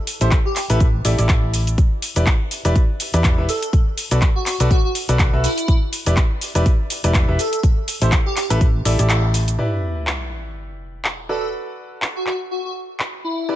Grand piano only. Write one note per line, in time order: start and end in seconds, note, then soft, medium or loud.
0.21 0.35 E4 medium
0.21 0.35 G4 medium
0.21 0.35 A4 medium
0.21 0.35 C5 medium
0.70 0.84 E4 loud
0.70 0.84 G4 medium
0.70 0.84 A4 medium
0.70 0.84 B4 loud
1.05 1.17 E4 medium
1.05 1.17 G4 medium
1.05 1.17 A4 medium
1.05 1.17 D5 loud
1.19 1.77 E4 medium
1.19 1.77 G4 medium
1.19 1.77 A4 medium
1.19 1.77 D5 medium
2.16 2.30 E4 medium
2.16 2.30 G4 medium
2.16 2.30 B4 medium
2.16 2.30 D5 medium
2.65 2.79 E4 loud
2.65 2.79 G4 medium
2.65 2.79 B4 medium
2.65 2.79 D5 loud
3.14 3.35 E4 medium
3.14 3.35 G4 medium
3.14 3.35 B4 medium
3.14 3.35 D5 loud
3.38 3.48 E4 medium
3.38 3.48 G4 medium
3.38 3.48 B4 medium
3.38 3.48 E5 medium
4.11 4.25 F#4 medium
4.11 4.25 A4 medium
4.11 4.25 B4 medium
4.11 4.25 D5 medium
4.60 4.74 F#4 loud
4.60 4.74 A4 medium
4.60 4.74 B4 medium
4.60 4.74 D5 loud
5.09 5.30 F#4 medium
5.09 5.30 A4 medium
5.09 5.30 B4 medium
5.09 5.30 D5 loud
5.33 5.47 F#4 medium
5.33 5.47 A4 medium
5.33 5.47 B4 medium
5.33 5.47 E5 medium
6.06 6.21 E4 medium
6.06 6.20 G4 medium
6.06 6.21 B4 medium
6.06 6.20 D5 medium
6.55 6.69 E4 loud
6.55 6.69 G4 medium
6.55 6.69 B4 medium
6.55 6.69 D5 loud
7.04 7.25 E4 medium
7.04 7.25 G4 medium
7.04 7.25 B4 medium
7.04 7.25 D5 loud
7.28 7.38 E4 medium
7.28 7.38 G4 medium
7.28 7.38 B4 medium
7.28 7.38 E5 medium
8.02 8.16 E4 medium
8.02 8.16 G4 medium
8.02 8.16 A4 medium
8.02 8.16 C5 medium
8.50 8.64 E4 loud
8.50 8.64 G4 medium
8.50 8.64 A4 medium
8.50 8.64 B4 loud
8.85 8.97 E4 medium
8.85 8.97 G4 medium
8.85 8.97 A4 medium
8.85 8.97 D5 loud
8.99 9.57 E4 medium
8.99 9.57 G4 medium
8.99 9.57 A4 medium
8.99 9.57 D5 medium
9.59 11.27 E4 medium
9.59 11.27 G4 medium
9.59 11.27 B4 medium
9.59 11.27 D5 medium
11.29 13.46 F#4 medium
11.29 13.46 A4 medium
11.29 13.46 B4 medium
11.29 13.46 D5 medium
13.49 13.56 E4 medium
13.49 13.56 G4 medium
13.49 13.56 B4 medium
13.49 13.56 D5 medium